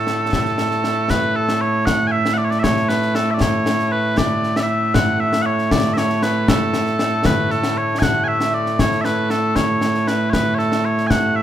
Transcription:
0.00 11.43 A2 medium
0.00 11.43 A3 medium
0.00 1.10 A4 medium
0.07 snare medium
0.33 concert bass drum soft
0.33 snare medium
0.46 snare soft
0.58 snare medium
0.71 snare soft
0.84 snare medium
1.10 1.36 B4 loud
1.10 concert bass drum medium
1.10 snare medium
1.36 1.61 A4 medium
1.49 snare medium
1.61 1.86 C#5 medium
1.86 2.07 F#5 loud
1.86 concert bass drum medium
1.86 snare medium
2.07 2.12 G#5 loud
2.12 2.34 E5 loud
2.26 snare medium
2.34 2.38 F#5 medium
2.38 2.44 D5 medium
2.44 2.50 C#5 medium
2.50 2.59 D5 loud
2.50 snare soft
2.59 2.89 C#5 loud
2.59 2.63 E5 loud
2.64 concert bass drum medium
2.64 snare medium
2.77 snare soft
2.89 3.15 B4 medium
2.89 snare medium
3.02 snare soft
3.15 3.31 A4 medium
3.15 snare medium
3.31 3.41 D5 medium
3.31 3.34 E5 medium
3.41 3.92 C#5 loud
3.41 concert bass drum medium
3.41 snare loud
3.66 snare medium
3.79 snare soft
3.92 4.18 B4 medium
4.18 4.56 D5 loud
4.18 concert bass drum medium
4.18 snare loud
4.43 snare soft
4.56 4.63 D5 medium
4.56 4.59 E5 medium
4.56 snare medium
4.63 4.69 E5 medium
4.69 4.94 E5 medium
4.94 5.20 F#5 loud
4.94 concert bass drum medium
4.94 snare loud
5.20 5.42 E5 medium
5.33 snare medium
5.42 5.71 C#5 medium
5.42 5.46 F#5 medium
5.59 snare soft
5.71 5.93 D5 loud
5.71 concert bass drum medium
5.71 snare loud
5.84 snare soft
5.93 5.98 E5 medium
5.93 snare medium
5.98 6.23 C#5 medium
6.10 snare soft
6.23 6.49 B4 medium
6.23 snare medium
6.48 7.26 A4 medium
6.48 concert bass drum medium
6.48 snare loud
6.74 snare medium
6.86 snare soft
6.99 snare medium
7.25 7.51 B4 medium
7.25 concert bass drum medium
7.25 snare loud
7.51 7.78 A4 medium
7.51 snare soft
7.63 snare medium
7.78 7.99 C#5 medium
7.99 8.24 F#5 medium
7.99 8.03 G#5 medium
7.99 concert bass drum medium
7.99 snare loud
8.24 8.28 G#5 loud
8.28 8.54 E5 loud
8.41 snare medium
8.54 8.80 D5 medium
8.66 snare soft
8.79 9.01 C#5 loud
8.79 concert bass drum medium
8.79 snare medium
8.92 snare soft
9.01 9.30 B4 medium
9.01 9.05 E5 medium
9.01 snare medium
9.30 9.56 A4 medium
9.30 snare medium
9.56 10.08 C#5 medium
9.56 concert bass drum soft
9.56 snare medium
9.81 snare medium
9.95 snare soft
10.08 10.30 B4 medium
10.08 snare medium
10.30 10.55 B4 medium
10.30 10.33 C#5 medium
10.30 concert bass drum medium
10.30 snare medium
10.55 10.85 A4 medium
10.55 10.58 C#5 medium
10.59 snare soft
10.72 snare medium
10.85 11.07 C#5 medium
10.98 snare soft
11.07 11.36 F#5 medium
11.07 11.10 G#5 medium
11.07 concert bass drum medium
11.07 snare medium
11.36 11.43 E5 medium

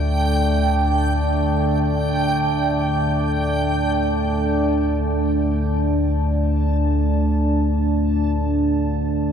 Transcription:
0.00 5.04 D2 medium
0.00 5.03 D3 medium
0.00 9.32 A3 medium
0.00 9.32 D4 medium
0.00 9.32 D5 medium
0.00 5.07 G5 medium
0.00 9.32 A5 medium
5.03 9.32 D2 medium
5.03 9.32 D3 medium
5.03 9.32 A5 medium

